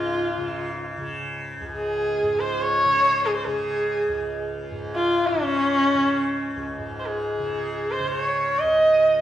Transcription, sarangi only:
0.00 0.96 F4 medium
1.75 2.41 G#4 medium
2.39 2.63 C5 medium
2.62 3.27 C#5 loud
3.26 3.36 G#4 medium
3.36 3.47 C5 soft
3.46 4.33 G#4 medium
4.96 5.29 F4 loud
5.28 6.65 C#4 loud
6.99 7.08 C5 medium
7.06 7.93 G#4 medium
7.91 8.09 C5 medium
8.09 8.21 C5 medium
8.21 8.61 C#5 medium
8.59 9.21 D#5 loud

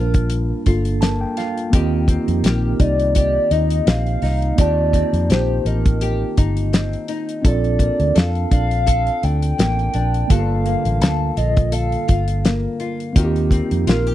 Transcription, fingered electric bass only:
0.00 0.52 A#1 loud
0.67 1.24 G1 medium
1.73 2.17 D#2 loud
2.28 2.41 F2 medium
2.44 2.72 A#1 medium
2.80 3.37 C2 medium
3.51 3.80 D#2 medium
3.87 4.16 A#1 medium
4.22 4.51 C2 medium
4.58 5.03 D#2 loud
5.13 5.31 F2 medium
5.29 5.58 A#1 medium
5.65 6.23 A1 medium
6.38 6.95 G1 medium
7.44 7.89 A#1 loud
8.00 8.13 D2 medium
8.16 8.44 F2 medium
8.51 9.09 A#1 medium
9.24 9.52 D2 medium
9.59 9.87 A1 medium
9.95 10.23 A#1 medium
10.30 10.74 G1 loud
10.85 11.01 A1 medium
11.01 11.30 D2 medium
11.37 11.94 A#1 medium
12.09 12.66 G1 medium
13.16 13.60 D#2 loud
13.71 13.84 F2 medium
13.87 14.15 A#1 loud

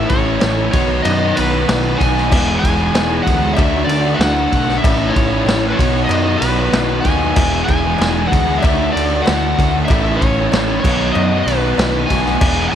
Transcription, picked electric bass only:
0.10 0.36 A1 medium
0.42 0.68 A1 medium
0.73 1.00 B1 loud
1.06 1.31 F#2 medium
1.38 1.64 B1 medium
1.69 1.95 B1 medium
2.00 2.33 B1 medium
2.32 2.58 E1 medium
2.64 2.89 E1 medium
2.93 3.20 E1 medium
3.27 3.53 D2 medium
3.59 3.84 D2 loud
3.87 4.14 D2 loud
4.19 4.46 D2 medium
4.53 4.79 B1 medium
4.84 5.10 A1 medium
5.16 5.42 A1 medium
5.45 5.72 A1 medium
5.79 6.05 B1 medium
6.10 6.36 F#2 loud
6.41 6.68 B1 medium
6.72 6.99 B1 medium
7.05 7.31 D#2 medium
7.36 7.63 E1 medium
7.69 7.94 E1 medium
8.00 8.26 E1 loud
8.32 8.58 D2 loud
8.65 8.90 D2 loud
8.95 9.21 D2 loud
9.28 9.53 D2 medium
9.59 9.84 D2 medium
9.91 10.16 A1 loud
10.22 10.47 A1 medium
10.52 10.78 A1 medium
10.85 11.10 B1 medium
11.16 11.41 F#2 loud
11.46 11.72 B1 loud
11.78 12.04 B1 medium
12.11 12.36 B1 loud
12.41 12.67 E1 medium

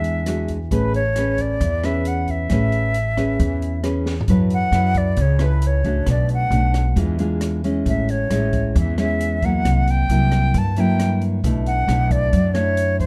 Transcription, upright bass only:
0.00 0.67 E2 loud
0.71 1.56 A1 medium
1.60 2.46 E2 loud
2.50 3.35 A1 medium
3.40 4.25 E2 loud
4.28 4.70 F#2 medium
4.72 5.14 F#2 loud
5.17 6.03 C#2 loud
6.07 6.48 B1 medium
6.50 6.93 B1 loud
6.96 7.82 E2 loud
7.86 8.27 A1 medium
8.30 8.72 A1 loud
8.76 9.61 E2 loud
9.65 10.06 C2 medium
10.09 10.51 C2 loud
10.54 11.39 G2 loud
11.44 11.85 B1 loud
11.88 12.29 B1 loud
12.33 13.06 F#2 loud

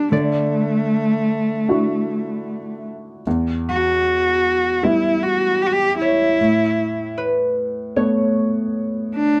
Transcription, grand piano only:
0.00 0.13 G3 soft
0.00 0.14 B3 soft
0.00 0.14 D4 medium
0.12 3.22 D3 medium
1.68 3.22 D4 soft
1.68 3.22 E4 soft
1.68 3.22 F#4 soft
3.27 6.36 E2 medium
4.83 6.35 G3 soft
4.83 6.36 B3 soft
4.83 6.36 E4 soft
6.41 9.40 A2 medium
7.96 9.40 A3 soft
7.96 9.40 B3 soft
7.96 9.40 C#5 soft

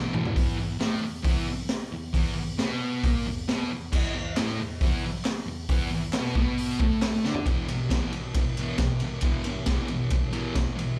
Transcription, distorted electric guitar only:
0.00 0.13 E2 medium
0.00 0.13 B2 loud
0.00 0.13 E3 loud
0.14 0.33 E2 medium
0.14 0.35 B2 loud
0.14 0.35 E3 loud
0.35 0.57 E2 loud
0.35 0.58 E3 loud
0.58 0.77 E2 medium
0.79 1.02 A2 loud
0.79 1.03 A3 loud
1.01 1.20 E2 medium
1.22 1.46 E2 loud
1.22 1.46 E3 loud
1.92 2.10 E2 medium
2.14 2.35 E2 loud
2.14 2.37 E3 loud
2.36 2.55 E2 medium
2.59 3.03 B2 loud
2.59 3.03 B3 loud
3.04 3.26 A#2 medium
3.04 3.26 A#3 loud
3.26 3.44 E2 medium
3.48 3.70 B2 medium
3.48 3.70 B3 loud
3.70 3.88 E2 medium
3.92 4.14 E2 loud
3.92 4.14 E3 loud
4.15 4.33 E2 medium
4.36 4.58 A2 loud
4.36 4.59 A3 loud
4.60 4.78 E2 medium
4.82 5.03 E2 medium
4.82 5.04 E3 loud
5.47 5.65 E2 medium
5.70 5.91 E2 loud
5.70 5.92 E3 loud
5.92 6.10 E2 medium
6.15 6.35 B2 medium
6.15 6.37 B3 loud
6.36 6.80 B2 medium
6.36 6.81 B3 loud
6.80 7.24 A2 loud
6.80 7.25 A3 medium
7.25 7.46 D3 loud
7.25 7.47 D4 loud
7.46 7.67 E2 medium
7.46 7.67 B2 loud
7.46 7.68 E3 loud
7.69 7.88 E2 medium
7.69 7.89 B2 medium
7.89 8.11 E2 loud
7.89 8.12 B2 loud
7.89 8.12 E3 loud
8.13 8.33 E2 medium
8.13 8.33 B2 medium
8.35 8.55 E2 medium
8.35 8.55 B2 medium
8.58 8.78 E2 medium
8.58 8.79 B2 loud
8.58 8.80 E3 loud
8.79 8.99 E2 medium
8.79 9.00 B2 medium
9.02 9.22 E2 medium
9.02 9.22 B2 medium
9.24 9.44 E2 medium
9.24 9.45 B2 loud
9.24 9.45 E3 medium
9.46 9.66 E2 medium
9.46 9.66 B2 medium
9.67 9.87 E2 loud
9.67 9.88 B2 loud
9.67 9.89 E3 loud
9.89 10.09 E2 medium
9.89 10.09 B2 medium
10.12 10.30 E2 medium
10.12 10.31 B2 medium
10.32 10.54 E2 medium
10.32 10.54 B2 loud
10.32 10.54 E3 loud
10.55 10.75 E2 medium
10.55 10.75 B2 medium
10.76 10.97 E2 medium
10.76 10.97 B2 medium

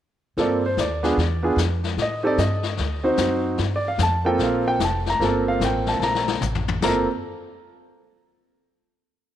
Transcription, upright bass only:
0.37 0.76 G2 medium
0.77 1.16 D#2 medium
1.17 1.56 E2 medium
1.56 1.96 F2 medium
1.97 2.36 A2 medium
2.38 2.77 G2 medium
2.79 3.17 D2 medium
3.18 3.57 F#2 medium
3.59 3.98 G2 medium
3.98 4.37 F2 medium
4.38 4.78 A#1 medium
4.79 5.18 F1 medium
5.19 5.59 G1 medium
5.60 5.99 A1 medium
5.99 6.39 A#1 medium
6.41 6.80 A1 medium
6.81 7.06 G1 medium

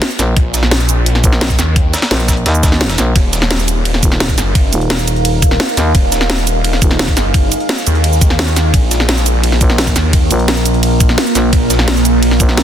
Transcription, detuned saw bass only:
0.37 1.22 A#1 loud
1.59 1.92 D#2 loud
3.16 4.01 D#1 loud
4.38 4.71 F#1 loud
5.95 6.80 D#1 loud
7.17 7.50 F#1 loud
7.87 8.72 D#2 loud
8.74 9.60 A#1 loud
9.96 10.29 D#2 loud
11.53 12.39 A#1 loud

